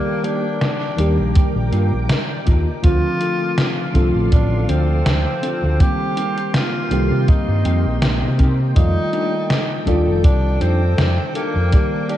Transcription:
Already playing: D#3 G3 A#3 G4 A#4 D5 G5 D6
0.23 A#3 D4 D#4 G4, closed hi-hat
0.61 snare, closed hi-hat
0.97 D#2 D#3 G3 A#3 D4 D#4 G4 A#4 F5, closed hi-hat
1.19 A#1
1.35 G5, kick, closed hi-hat
1.56 A#1
1.72 G2 A#3 D4 D#4 F4 F5, closed hi-hat
1.93 A#1
2.09 D#5, snare, closed hi-hat
2.30 D5
2.46 D#2 A#3 D4 D#4 F4 D#5, kick, closed hi-hat
2.82 D2 D3 F3 A3 C4 F4 A4 F5 C6, kick, closed hi-hat
3.20 C4 D4 F4 A4, closed hi-hat
3.58 snare, closed hi-hat
3.93 C2 D3 F3 A3 C4 D4 F4 A4, kick, closed hi-hat
4.15 A1
4.32 A1 D4, kick, closed hi-hat
4.68 D2 C4 D4 F4 A4, closed hi-hat
5.06 D2, snare, closed hi-hat
5.42 C4 D4 F4 A4, closed hi-hat
5.63 D2
5.79 D#3 G3 A#3 C4 G4 G5 C6, kick, closed hi-hat
6.16 C4 D#4 G4 A#4, closed hi-hat
6.38 closed hi-hat
6.54 F4, snare, closed hi-hat
6.90 C2 D#3 G3 A#3 C4 D#4 G4 A4, closed hi-hat
7.11 C3
7.28 D#4, kick, closed hi-hat
7.48 G2
7.65 F2 C4 D#4 G4 A#4 G5, closed hi-hat
7.86 A#1
8.02 G5, snare, closed hi-hat
8.23 C3 D#5
8.39 C4 D#4 G4 A#4 C5, kick, closed hi-hat
8.75 F2 D#3 G3 A3 D#4 F4 A4 D5 D6, kick, closed hi-hat
9.13 D4 D#4 G4 A4, closed hi-hat
9.50 snare, closed hi-hat
9.86 D#2 D#3 G3 D4 D#4 F4 G4 A4 D5, kick, closed hi-hat
10.08 F1
10.24 C2 D4, kick, closed hi-hat
10.61 F2 C4 D4 D#4 G4 C5, closed hi-hat
10.98 F2, snare, closed hi-hat
11.35 A#3 D4 D#4 G4 A4, closed hi-hat
11.56 F2
11.71 D#3 G3 A#3 G4 A#4 D5 A#5, kick, closed hi-hat
12.09 D4 D#4 G4 A#4, closed hi-hat

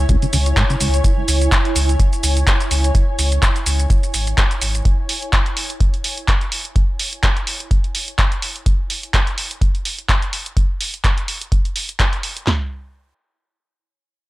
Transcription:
Already playing: E4 C#5 G#5
0.09 C#2, kick, closed hi-hat, shaker
0.22 C#3, closed hi-hat, shaker
0.33 C#2 C#3, open hi-hat, shaker
0.46 closed hi-hat, shaker
0.57 G#2, kick, clap, closed hi-hat, shaker
0.70 C#3, closed hi-hat, shaker
0.80 C#2, open hi-hat, shaker
0.94 closed hi-hat, shaker
1.04 kick, closed hi-hat, shaker
1.28 C#2, open hi-hat, shaker
1.41 closed hi-hat, shaker
1.52 kick, clap, closed hi-hat, shaker
1.65 closed hi-hat
1.76 C#2, open hi-hat, shaker
1.89 closed hi-hat, shaker
1.99 kick, closed hi-hat, shaker
2.13 closed hi-hat, shaker
2.23 C#2, open hi-hat, shaker
2.37 closed hi-hat, shaker
2.47 kick, clap, closed hi-hat, shaker
2.60 closed hi-hat, shaker
2.71 C#2, open hi-hat, shaker
2.84 closed hi-hat, shaker
2.95 kick, closed hi-hat, shaker
3.19 C#2, open hi-hat, shaker
3.32 closed hi-hat, shaker
3.42 kick, clap, closed hi-hat, shaker
3.56 closed hi-hat, shaker
3.66 C#2, open hi-hat, shaker
3.80 closed hi-hat, shaker
3.90 kick, closed hi-hat, shaker
4.03 closed hi-hat, shaker
4.14 G#1, open hi-hat, shaker
4.27 closed hi-hat, shaker
4.38 kick, clap, closed hi-hat, shaker
4.51 closed hi-hat, shaker
4.61 G#1, open hi-hat, shaker
4.75 closed hi-hat, shaker
4.85 kick, closed hi-hat
5.09 open hi-hat
5.22 closed hi-hat
5.33 kick, clap, closed hi-hat
5.46 closed hi-hat
5.57 open hi-hat
5.70 closed hi-hat
5.80 kick, closed hi-hat
5.94 closed hi-hat
6.04 open hi-hat
6.18 closed hi-hat
6.28 kick, clap, closed hi-hat
6.41 closed hi-hat
6.52 open hi-hat
6.65 closed hi-hat
6.76 kick, closed hi-hat
6.99 open hi-hat
7.13 closed hi-hat
7.23 kick, clap, closed hi-hat
7.37 closed hi-hat
7.47 open hi-hat
7.60 closed hi-hat
7.71 kick, closed hi-hat
7.84 closed hi-hat
7.95 open hi-hat
8.08 closed hi-hat
8.19 kick, clap, closed hi-hat
8.32 closed hi-hat
8.42 open hi-hat
8.56 closed hi-hat
8.66 kick, closed hi-hat
8.90 open hi-hat
9.03 closed hi-hat
9.14 kick, clap, closed hi-hat
9.27 closed hi-hat
9.38 open hi-hat
9.51 closed hi-hat
9.61 kick, closed hi-hat
9.75 closed hi-hat
9.85 open hi-hat
9.99 closed hi-hat
10.09 kick, clap, closed hi-hat
10.22 closed hi-hat
10.33 open hi-hat
10.46 closed hi-hat
10.57 kick, closed hi-hat
10.81 open hi-hat
10.94 closed hi-hat
11.04 kick, clap, closed hi-hat
11.18 closed hi-hat
11.28 open hi-hat
11.41 closed hi-hat
11.52 kick, closed hi-hat
11.65 closed hi-hat
11.76 open hi-hat
11.89 closed hi-hat
12.00 kick, clap, closed hi-hat
12.13 closed hi-hat
12.23 open hi-hat
12.37 closed hi-hat
12.47 snare, clap, floor tom

